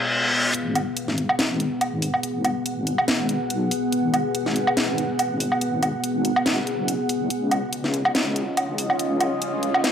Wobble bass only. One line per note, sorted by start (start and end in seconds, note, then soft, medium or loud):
0.54 2.22 G#1 loud
2.23 3.39 G#1 loud
3.41 3.91 B1 medium
3.92 5.60 G#1 loud
5.61 6.45 G#1 loud
6.46 6.68 G#1 medium
6.67 7.29 F#1 medium
7.30 8.98 C#2 loud
8.99 9.92 C#2 loud